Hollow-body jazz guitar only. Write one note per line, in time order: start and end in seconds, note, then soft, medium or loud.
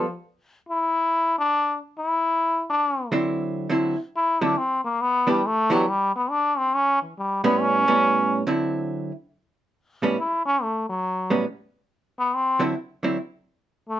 3.12 3.67 D3 medium
3.12 3.67 F#3 medium
3.12 3.67 C4 medium
3.12 3.67 E4 medium
3.69 3.94 D3 medium
3.69 3.95 F#3 medium
3.69 3.95 C4 medium
3.69 3.95 E4 medium
4.41 4.55 D3 medium
4.41 4.55 F#3 medium
4.41 4.55 C4 medium
4.41 4.55 E4 medium
5.27 5.41 E3 medium
5.27 5.41 B3 medium
5.27 5.41 D4 medium
5.27 5.41 G4 medium
5.70 5.84 E3 medium
5.70 5.84 B3 medium
5.70 5.84 D4 medium
5.70 5.85 G4 medium
7.44 7.84 A2 medium
7.44 7.84 G3 medium
7.44 7.84 B3 medium
7.44 7.84 C#4 medium
7.88 8.42 A2 medium
7.88 8.42 G3 medium
7.88 8.42 B3 medium
7.88 8.42 C#4 medium
8.47 9.11 D3 medium
8.47 9.11 F#3 medium
8.47 9.11 C4 medium
8.47 9.12 E4 medium
10.02 10.15 A2 medium
10.02 10.16 G3 medium
10.02 10.16 B3 medium
10.02 10.16 C#4 medium
11.30 11.44 A2 medium
11.30 11.44 G3 medium
11.30 11.44 B3 medium
11.30 11.44 C#4 medium
12.59 12.73 D3 medium
12.59 12.73 F#3 medium
12.59 12.73 C4 medium
12.59 12.74 E4 medium
13.03 13.16 D3 soft
13.03 13.17 F#3 medium
13.03 13.17 C4 medium
13.03 13.17 E4 medium